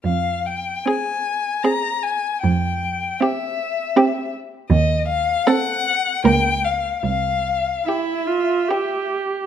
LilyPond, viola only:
\new Staff \with { instrumentName = "Viola" } { \time 3/4 \key f \minor \tempo 4 = 77 r4 c'4 c'4 | r4 c'4 c'4 | r4 c'4 bes4 | r4 e'8 f'8 g'4 | }